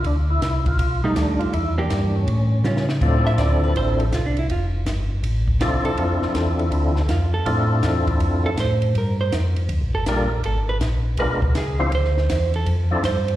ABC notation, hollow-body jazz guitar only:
X:1
M:4/4
L:1/8
Q:"Swing" 1/4=162
K:Dm
V:1 name="Hollow-body jazz guitar"
z4 z [G,A,^D]3 | z [E,B,DG]3 z2 [G,^CF] z | z e d =B c A (3F D E | F z4 z F A- |
A2 z4 F A- | A2 z3 A c2 | B c z3 A B2 | A =B z2 B2 ^G2 |
c3 A z2 c2 |]